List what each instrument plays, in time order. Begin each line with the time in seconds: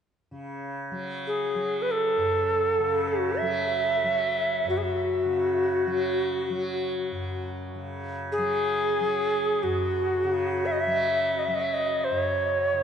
0.31 tanpura C#3
0.91 tanpura F#3
1.27 native american-style wooden flute G#4
1.55 tanpura F#3
1.82 native american-style wooden flute B4
1.91 native american-style wooden flute A4
2.17 tanpura F#2
2.79 tanpura C#3
3.08 native american-style wooden flute F#4
3.38 tanpura F#3, native american-style wooden flute E5
4.04 tanpura F#3
4.64 tanpura F#2
4.69 native american-style wooden flute F#4
4.77 native american-style wooden flute G#4
4.84 native american-style wooden flute F#4
5.25 tanpura C#3
5.86 tanpura F#3
6.50 tanpura F#3
7.11 tanpura F#2
7.75 tanpura C#3
8.32 native american-style wooden flute G#4
8.38 tanpura F#3
9.00 tanpura F#3
9.63 tanpura F#2, native american-style wooden flute F#4
10.24 tanpura C#3
10.66 native american-style wooden flute E5
10.72 native american-style wooden flute D#5
10.80 native american-style wooden flute E5
10.87 tanpura F#3
11.39 native american-style wooden flute D#5
11.45 tanpura F#3, native american-style wooden flute E5
11.55 native american-style wooden flute D#5
11.62 native american-style wooden flute E5
11.73 native american-style wooden flute D#5
12.04 native american-style wooden flute C5
12.10 tanpura F#2
12.21 native american-style wooden flute C#5
12.73 tanpura C#3